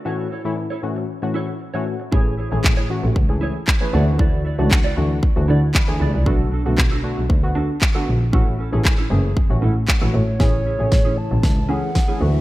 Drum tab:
CP |--------|--x---x-|--x---x-|--x---x-|
SD |--------|--------|--------|--------|
BD |--------|o-o-o-o-|o-o-o-o-|o-o-o-o-|

CP |--x---x-|--------|
SD |--------|o-o-o-o-|
BD |o-o-o-o-|o-o-o-o-|